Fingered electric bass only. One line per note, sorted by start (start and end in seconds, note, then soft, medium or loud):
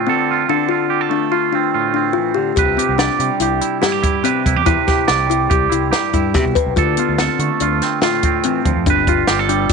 2.57 2.76 C2 loud
2.89 3.08 C2 medium
3.19 3.29 C3 medium
3.40 3.59 C2 medium
4.46 4.55 C2 medium
4.56 4.75 E2 medium
5.09 5.47 C2 medium
5.51 5.70 C2 medium
5.72 5.91 C2 medium
6.14 6.35 G2 medium
6.35 6.44 C3 medium
6.45 6.54 C2 medium
6.66 6.76 B1 medium
6.77 6.96 D2 medium
7.09 7.27 D2 medium
7.39 7.49 D3 medium
7.61 7.79 D2 medium
8.66 8.75 D2 medium
8.76 8.85 F2 medium
8.87 9.24 G1 medium
9.29 9.66 G1 medium
9.70 9.73 G1 medium